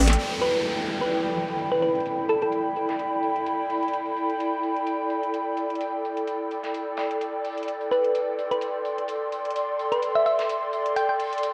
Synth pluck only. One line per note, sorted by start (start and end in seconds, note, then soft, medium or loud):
0.42 0.78 B4 medium
1.01 1.18 B4 medium
1.72 1.78 B4 medium
1.82 1.91 B4 medium
2.29 2.37 A4 medium
2.42 2.49 A4 medium
7.91 8.28 B4 medium
8.51 8.68 B4 medium
9.92 10.09 B4 medium
10.15 10.22 E5 medium
10.26 10.34 E5 medium
10.96 11.05 G5 medium
11.09 11.16 G5 medium